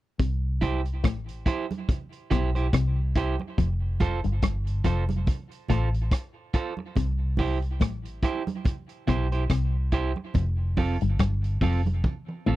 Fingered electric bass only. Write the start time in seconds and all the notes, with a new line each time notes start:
0.20 C2
1.05 A1
2.32 B1
2.74 C2
3.59 F1
4.25 G1
4.43 G1
4.85 F1
5.71 A1
6.97 C2
7.82 A1
9.09 B1
9.51 C2
10.35 F1
11.02 G1
11.20 G1
11.62 F1
12.48 A1